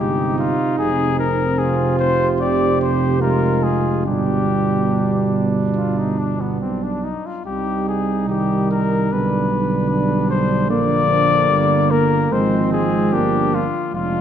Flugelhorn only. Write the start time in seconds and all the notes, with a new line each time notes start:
0.00 D#4
1.59 F4
2.40 G4
3.21 F4
4.06 D4
7.46 D#4
9.10 D4
9.90 D4
10.70 A#3
12.32 C4
13.13 D4
13.94 D4